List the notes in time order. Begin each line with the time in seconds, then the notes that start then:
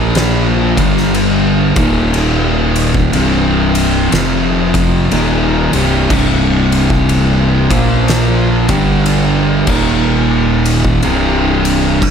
Already playing: A#1 A#2 F3 A#3
0.15 snare, ride
0.77 G1 G2 D3 G3, kick, ride
0.97 snare
1.14 ride
1.76 D#1 D#2 A#2 D#3, kick, ride
2.14 ride
2.76 ride
2.94 kick
3.13 C1 C2 G2 C3, ride
3.75 ride
4.12 F1 F2 C3 F3, snare, ride
4.74 kick, ride
5.11 D#1 D#2 A#2 D#3, ride
5.73 C1 C2 G2 C3, ride
6.10 C1 C2 G2 C3, kick, crash
6.72 ride
6.90 kick
7.09 ride
7.70 A#1 A#2 F3 A#3, kick, ride
8.08 snare, ride
8.69 G1 G2 D3 G3, kick, ride
9.06 ride
9.67 D#1 D#2 A#2 D#3, kick, crash
10.66 ride
10.85 kick
11.03 C1 C2 G2 C3, ride
11.65 ride
12.02 kick, crash